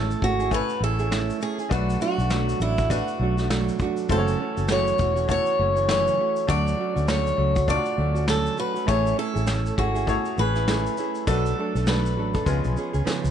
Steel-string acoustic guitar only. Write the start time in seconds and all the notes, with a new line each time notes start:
Already playing: A4
0.24 F#4
0.54 B4
0.84 A4
1.43 G#4
1.72 F#4
2.02 F#4
2.62 E4
2.91 F#4
4.12 A4
4.72 C#5
5.31 C#5
5.91 C#5
6.50 D5
7.10 C#5
7.70 D5
8.30 A4
8.60 B4
8.89 C#5
9.19 A4
9.79 F#4
10.39 B4
11.27 A4
11.88 B4